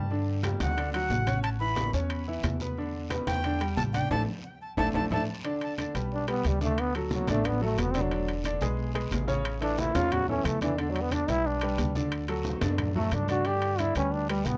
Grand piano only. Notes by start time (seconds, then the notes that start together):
0.11 D3 D4
0.45 G3 G4
0.77 D3 D4
0.94 F#3 F#4
1.27 C#4 C#5
1.61 E3 E4
1.94 C#4 C#5
2.28 E3 E4
2.61 B3 B4
2.78 D3 D4
3.11 B3 B4
3.45 D3 D4
3.61 G3 G4
3.94 D4 D5
4.11 A3 D4 E4
4.78 A3 D4 E4
4.94 A3 D4 E4
5.11 A3 D4 E4
5.44 D3 D4 D5
5.78 D3 D4 D5
5.95 G3 G4 B4
6.28 G3 G4 B4
6.61 D3 D4 D5
6.95 F#3 F#4 A4
7.29 D3 D4 D5
7.61 F#3 F#4 A4
7.95 D3 D4 D5
8.12 D3 D4 D5
8.45 D3 D4 D5
8.62 G#3 G#4 B4
8.95 G#3 G#4 B4
9.27 C#3 C#4 C#5
9.61 E3 E4 A4
9.96 C#3 C#4 C#5
10.29 E3 E4 A4
10.61 D3 D4 D5
10.79 D3 D4 D5
11.11 D3 D4 D5
11.29 G3 G4 B4
11.63 G3 G4 B4
11.95 D3 D4 D5
12.29 F#3 F#4 A4
12.62 D3 D4 D5
12.96 F#3 F#4 A4
13.29 D3 D4 D5
13.46 D3 D4 D5
13.80 D3 D4 D5
13.97 G3 G4 B4
14.30 G3 G4 B4